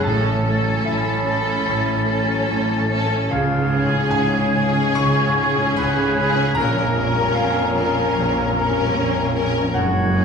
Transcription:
Already playing: harp C#4 C#5
0.02 double bass section A1, cello section A2, grand piano A2 A5, harp A2, french horn section A3 C#4, clarinet C#4, viola section C#4, oboe A4, flute section A6
0.06 violin section C#4 A4
0.33 grand piano E3
0.46 violin section C#4 A4, viola section C#4, harp C#5
0.59 grand piano F#3
0.84 double bass section A1, cello section A2, grand piano E3 E5, harp C#4, oboe E4
1.15 grand piano C#4
1.26 viola section C#4, violin section C#4 A4, harp C#5
1.41 grand piano A4
1.67 double bass section A1, cello section A2, grand piano A2, harp E3
1.96 grand piano E3
2.08 viola section C#4, violin section C#4 A4, harp C#5
2.23 grand piano F#3
2.50 double bass section A1, cello section A2, grand piano E3, harp C#4
2.77 grand piano C#4
2.89 viola section C#4, violin section C#4 A4, harp C#5
3.06 grand piano A4
3.29 double bass section C#2, grand piano C#2 F5, cello section C#3, harp C#3, french horn section G#3 C#4, clarinet C#4, oboe F4, flute section G#6
3.58 grand piano G#2
3.70 violin section C#4 G#4, viola section C#4, harp C#5
3.85 grand piano A2
4.10 double bass section C#2, grand piano G#2 G#5, cello section C#3, oboe G#4
4.42 grand piano C#4
4.54 violin section C#4 G#4, viola section C#4, harp C#5
4.70 grand piano G#4
4.95 double bass section C#2, cello section C#3, harp G#3, oboe C#5, grand piano C#6
5.00 grand piano C#2
5.28 grand piano G#2
5.37 viola section C#4, violin section C#4 G#4, harp C#5
5.54 grand piano A2
5.76 double bass section C#2, grand piano G#2 B5, cello section C#3, harp C#4, oboe B4
6.06 grand piano C#4
6.17 violin section C#4 G#4, viola section C#4, harp C#5
6.31 grand piano G#4
6.55 grand piano A#1 A#5, double bass section A#1, harp A#2, cello section A#2, clarinet C#4, viola section C#4, violin section C#4 A#4, french horn section C#4, oboe A#4, flute section A#5
6.59 french horn section A#3
6.85 grand piano F2
6.95 violin section C#4 A#4, viola section C#4, harp C#5
7.11 grand piano G2
7.35 double bass section A#1, grand piano F2 F5, cello section A#2, harp C#4, oboe F4
7.63 grand piano C#4
7.76 violin section C#4 A#4, viola section C#4, harp C#5
7.90 grand piano A#4
8.14 double bass section A#1, cello section A#2, harp F3
8.19 grand piano A#1
8.44 grand piano F2
8.54 viola section C#4, violin section C#4 A#4
8.70 grand piano G2
8.95 double bass section A#1, grand piano F2, cello section A#2, harp C#4
9.21 grand piano C#4
9.35 viola section C#4, violin section C#4 A#4, harp C#5
9.49 grand piano A#4
9.74 double bass section F#1, cello section F#2, harp F#2, grand piano F#2 F#5, french horn section G#3 C#4, clarinet C#4, oboe F#4, flute section G#6
10.03 grand piano C#3
10.15 violin section C#4 G#4, viola section C#4, harp C#5

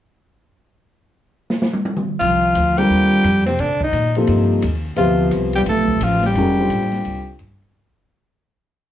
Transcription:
1.50 snare
1.62 snare
1.73 high tom
1.85 high tom
1.97 mid tom
2.19 upright bass C2, bass clarinet F3, tenor saxophone F4, ride
2.55 upright bass D2, hi-hat pedal, ride
2.77 grand piano D3 G3 C4 F4 A#4, bass clarinet G3, tenor saxophone G4, ride
2.90 upright bass D#2
3.24 upright bass F2, hi-hat pedal, ride
3.46 bass clarinet C3, tenor saxophone C4, snare, ride
3.59 upright bass C3, bass clarinet D3, tenor saxophone D4, ride
3.81 bass clarinet D#3, tenor saxophone D#4, kick
3.92 upright bass A#2, hi-hat pedal, ride
4.15 grand piano C3 F3 A#3 D#4 A4, ride
4.27 upright bass G2, ride
4.62 upright bass D#2, hi-hat pedal, ride
4.96 upright bass D2, grand piano C3 F3 B3 G4 E5, bass clarinet F3, tenor saxophone F4, ride
5.31 upright bass C2, hi-hat pedal, ride
5.53 tenor saxophone G4, ride
5.57 bass clarinet G3
5.66 upright bass B1, bass clarinet A3, tenor saxophone A4, ride
5.88 kick
5.99 upright bass A1, hi-hat pedal, ride
6.03 bass clarinet F3, tenor saxophone F4
6.22 bass clarinet G3, tenor saxophone G4, snare, ride
6.35 upright bass F1, grand piano D#3 G#3 C#4 F#4 A#4, ride
6.59 grand piano D3 G3 C4 F4 A4
6.69 upright bass A1, hi-hat pedal, ride
6.81 snare
6.91 snare, ride
7.05 upright bass C2, ride
7.39 upright bass G2, hi-hat pedal, ride
7.62 ride

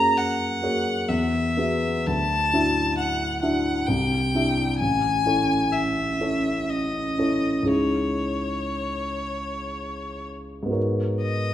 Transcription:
Already playing: grand piano F#2 A#3 F#4 G#4 C#5, violin A#5
0.18 violin F#5
0.62 grand piano A#3 F#4 G#4 C#5
1.09 grand piano E2, violin E5
1.57 grand piano B3 F#4 G#4 E5
2.07 grand piano D2, violin A5
2.53 grand piano D4 E4 F#4 E5
2.98 violin F#5
3.42 grand piano D4 E4 F#4 E5, violin F#5
3.87 grand piano C2, violin G5
4.35 grand piano D4 E4 G4 E5
4.79 grand piano A1, violin G#5
5.26 grand piano C#4 E4 A4 C#5
5.72 violin E5
6.20 grand piano C#4 E4 A4 C#5
6.70 violin D#5
7.18 grand piano C#4 E4 A4 C#5
7.63 grand piano C#2 D#4 E4 G#4
7.67 grand piano C#5, violin C#5
10.63 grand piano G#2 B3
10.68 grand piano F#4 A#4
10.73 grand piano C#5
11.22 violin D#5

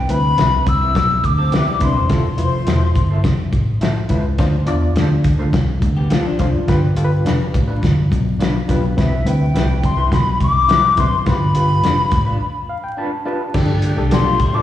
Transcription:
Already playing: flute G5
0.09 picked electric bass D2, reed electric piano C4 E4 B4, flute B5, closed hi-hat
0.38 picked electric bass C2, clean electric guitar C4 E4 B4, snare, closed hi-hat
0.66 picked electric bass C2, flute E6, kick, closed hi-hat
0.81 clean electric guitar C4 E4 B4
0.95 picked electric bass B1, kick, snare, closed hi-hat
1.24 picked electric bass D2, flute D6, kick, closed hi-hat
1.38 clean electric guitar C4 A4
1.52 clean electric guitar B3 C4 E4 G4 B4, snare, closed hi-hat
1.66 clean electric guitar G3 E4
1.80 picked electric bass C2, reed electric piano C4 E4 B4, clean electric guitar C4 D4 E4 B4, flute C6, kick, snare, closed hi-hat
1.95 picked electric bass E1, clean electric guitar E3 C4
2.09 picked electric bass F1, reed electric piano E4 F4 A4, flute C6, kick, snare, closed hi-hat
2.38 picked electric bass F1, reed electric piano E4 F4 B4, closed hi-hat
2.45 reed electric piano C5
2.67 picked electric bass E1, clean electric guitar E4 A4 C5, snare, closed hi-hat
2.95 picked electric bass G1, kick, closed hi-hat
3.10 clean electric guitar E4 A4 C5
3.24 picked electric bass F1, kick, snare, closed hi-hat
3.53 picked electric bass A1, kick, closed hi-hat
3.81 clean electric guitar E4 A4 C5, snare, closed hi-hat
4.09 picked electric bass C#2, reed electric piano E4 F4 B4, clean electric guitar E4 A4 C5, kick, snare, closed hi-hat
4.38 picked electric bass D2, reed electric piano D4 F4 C5, kick, snare, closed hi-hat
4.67 picked electric bass E2, reed electric piano D4 F4 D5, closed hi-hat
4.95 picked electric bass D2, clean electric guitar F4 A4 C5, snare, closed hi-hat
5.24 kick, closed hi-hat
5.39 picked electric bass D2, clean electric guitar F4 A4 C5
5.53 picked electric bass C2, kick, snare, closed hi-hat
5.82 picked electric bass D2, kick, closed hi-hat
5.97 clean electric guitar B3 G4
6.10 clean electric guitar A3 F4 A4 C5, snare, closed hi-hat
6.25 clean electric guitar F3 D4
6.39 picked electric bass C2, reed electric piano D4 F4 C5, clean electric guitar F4 A4 C5, kick, snare, closed hi-hat
6.54 picked electric bass F#1
6.68 picked electric bass G1, reed electric piano F4 G4 B4, kick, snare, closed hi-hat
6.96 picked electric bass G1, reed electric piano F4 G4 A4, closed hi-hat
7.05 reed electric piano B4
7.25 picked electric bass F1, clean electric guitar D4 F4 B4, snare, closed hi-hat
7.54 picked electric bass A1, kick, closed hi-hat
7.68 clean electric guitar D4 F4 B4
7.83 picked electric bass G1, kick, snare, closed hi-hat
8.11 picked electric bass B1, kick, closed hi-hat
8.39 clean electric guitar D4 F4 B4, snare, closed hi-hat
8.68 picked electric bass B1, clean electric guitar D4 F4 B4, reed electric piano F4 G4 B4, kick, snare, closed hi-hat
8.97 picked electric bass C2, reed electric piano C4 E4 B4, flute E5, kick, snare, closed hi-hat
9.25 picked electric bass D2, reed electric piano C4 E4 B4, flute G5, closed hi-hat
9.54 picked electric bass C2, clean electric guitar E4 G4 B4, snare, closed hi-hat
9.83 picked electric bass C2, flute C6, kick, closed hi-hat
9.97 clean electric guitar E4 G4 B4
10.12 picked electric bass B1, flute B5, kick, snare, closed hi-hat
10.40 picked electric bass C2, flute D6, kick, closed hi-hat
10.68 clean electric guitar E4 G4 B4, snare, closed hi-hat
10.97 picked electric bass B1, reed electric piano C4 E4 B4, clean electric guitar E4 G4 B4, flute C6, kick, closed hi-hat
11.12 picked electric bass F#1
11.26 picked electric bass G1, reed electric piano F4 G4 B4, flute B5, kick, snare, closed hi-hat
11.54 picked electric bass G1, reed electric piano F4 G4 B4, closed hi-hat
11.83 picked electric bass F1, clean electric guitar D4 F4 B4, snare, closed hi-hat
12.11 picked electric bass A1, kick, closed hi-hat
12.26 clean electric guitar D4 F4 B4
12.69 reed electric piano F5
12.84 reed electric piano G5
12.97 clean electric guitar D4 F4 B4, reed electric piano A5
13.26 clean electric guitar D4 F4 B4, reed electric piano F4 G4 B4 A5
13.54 picked electric bass G1, tonewheel organ G3 A3 D4 G4, reed electric piano D4 G4 A4, kick, snare, crash
13.82 closed hi-hat
13.97 picked electric bass C2, reed electric piano D4 G4 A4
14.11 picked electric bass B1, clean electric guitar B3 G4 A4 D5, flute C6, snare, closed hi-hat
14.25 clean electric guitar A3 F4
14.40 picked electric bass A1, clean electric guitar G3 E4, kick, closed hi-hat
14.53 clean electric guitar F3 D4 G4 A4 D5, reed electric piano D4 G4 A4, flute D6

